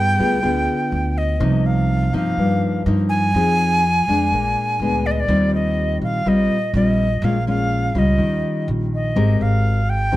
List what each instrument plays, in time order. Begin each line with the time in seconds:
Already playing: upright bass G2, nylon-string guitar G3 B3 F4 G#4, flute G5
0.19 upright bass D2, nylon-string guitar B3 F4 G#4
0.42 upright bass D2, nylon-string guitar D3 B3 F4 G#4
0.92 upright bass D2
1.18 flute D#5
1.40 upright bass C2, nylon-string guitar C3 F3 A#3 D#4
1.66 flute F5
2.13 upright bass G2, nylon-string guitar F3 A#3 D#4, flute F5
2.37 upright bass G2, nylon-string guitar G2
2.86 upright bass G2, nylon-string guitar F3 A#3 D#4
3.09 flute G#5
3.34 upright bass F2, nylon-string guitar F3 C4 D#4 G#4
4.08 upright bass F2, nylon-string guitar G#3 D4
4.32 upright bass A#1, nylon-string guitar A#2
4.80 upright bass D2, nylon-string guitar G#3 B3 D4
5.06 flute D5
5.11 flute D#5
5.20 flute D5
5.28 upright bass D#2, nylon-string guitar D#3 G3 C4 F4
5.55 flute D#5
6.01 upright bass A#1, flute F5
6.25 upright bass A#1, nylon-string guitar A#2 G3 C4 F4, flute D#5
6.74 upright bass A#1, nylon-string guitar G3 C4 F4, flute D#5
7.22 upright bass A#1, nylon-string guitar A#2 G#3 C#4 F4, flute F5
7.47 nylon-string guitar G#3 C#4 F4, flute F5
7.95 upright bass C#2, nylon-string guitar G3 C#4 F4, flute D#5
8.18 upright bass D#2, nylon-string guitar D#3
8.68 upright bass A#1
8.94 flute D#5
9.16 upright bass G#1, nylon-string guitar G#3 C4 G4 A#4
9.41 upright bass G#1, flute F5
9.90 flute G5
10.12 upright bass D#2, nylon-string guitar D#3 C4 G4 A#4